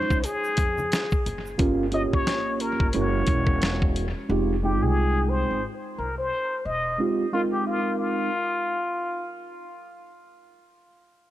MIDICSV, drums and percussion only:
0, 0, Header, 1, 2, 480
1, 0, Start_track
1, 0, Key_signature, -4, "minor"
1, 0, Tempo, 674157
1, 1136, Time_signature, 4, 2, 24, 8
1, 8048, End_track
2, 0, Start_track
2, 0, Title_t, "Drums"
2, 75, Note_on_c, 9, 36, 88
2, 77, Note_on_c, 9, 82, 41
2, 146, Note_off_c, 9, 36, 0
2, 148, Note_off_c, 9, 82, 0
2, 168, Note_on_c, 9, 42, 85
2, 179, Note_on_c, 9, 82, 61
2, 240, Note_off_c, 9, 42, 0
2, 250, Note_off_c, 9, 82, 0
2, 314, Note_on_c, 9, 82, 42
2, 385, Note_off_c, 9, 82, 0
2, 405, Note_on_c, 9, 42, 84
2, 412, Note_on_c, 9, 36, 92
2, 414, Note_on_c, 9, 82, 49
2, 476, Note_off_c, 9, 42, 0
2, 483, Note_off_c, 9, 36, 0
2, 485, Note_off_c, 9, 82, 0
2, 556, Note_on_c, 9, 63, 59
2, 556, Note_on_c, 9, 82, 44
2, 627, Note_off_c, 9, 63, 0
2, 627, Note_off_c, 9, 82, 0
2, 655, Note_on_c, 9, 42, 74
2, 658, Note_on_c, 9, 82, 68
2, 664, Note_on_c, 9, 38, 110
2, 726, Note_off_c, 9, 42, 0
2, 729, Note_off_c, 9, 82, 0
2, 735, Note_off_c, 9, 38, 0
2, 790, Note_on_c, 9, 82, 44
2, 799, Note_on_c, 9, 36, 92
2, 861, Note_off_c, 9, 82, 0
2, 870, Note_off_c, 9, 36, 0
2, 899, Note_on_c, 9, 42, 70
2, 901, Note_on_c, 9, 64, 49
2, 901, Note_on_c, 9, 82, 37
2, 970, Note_off_c, 9, 42, 0
2, 973, Note_off_c, 9, 64, 0
2, 973, Note_off_c, 9, 82, 0
2, 1040, Note_on_c, 9, 82, 43
2, 1112, Note_off_c, 9, 82, 0
2, 1132, Note_on_c, 9, 42, 87
2, 1134, Note_on_c, 9, 36, 107
2, 1203, Note_off_c, 9, 42, 0
2, 1205, Note_off_c, 9, 36, 0
2, 1365, Note_on_c, 9, 42, 57
2, 1437, Note_off_c, 9, 42, 0
2, 1519, Note_on_c, 9, 36, 79
2, 1590, Note_off_c, 9, 36, 0
2, 1616, Note_on_c, 9, 38, 100
2, 1621, Note_on_c, 9, 42, 79
2, 1688, Note_off_c, 9, 38, 0
2, 1692, Note_off_c, 9, 42, 0
2, 1852, Note_on_c, 9, 42, 72
2, 1923, Note_off_c, 9, 42, 0
2, 1994, Note_on_c, 9, 36, 90
2, 2065, Note_off_c, 9, 36, 0
2, 2086, Note_on_c, 9, 42, 84
2, 2158, Note_off_c, 9, 42, 0
2, 2325, Note_on_c, 9, 42, 81
2, 2332, Note_on_c, 9, 36, 92
2, 2396, Note_off_c, 9, 42, 0
2, 2403, Note_off_c, 9, 36, 0
2, 2468, Note_on_c, 9, 36, 79
2, 2540, Note_off_c, 9, 36, 0
2, 2575, Note_on_c, 9, 42, 70
2, 2584, Note_on_c, 9, 38, 105
2, 2646, Note_off_c, 9, 42, 0
2, 2655, Note_off_c, 9, 38, 0
2, 2720, Note_on_c, 9, 36, 92
2, 2791, Note_off_c, 9, 36, 0
2, 2819, Note_on_c, 9, 42, 70
2, 2891, Note_off_c, 9, 42, 0
2, 8048, End_track
0, 0, End_of_file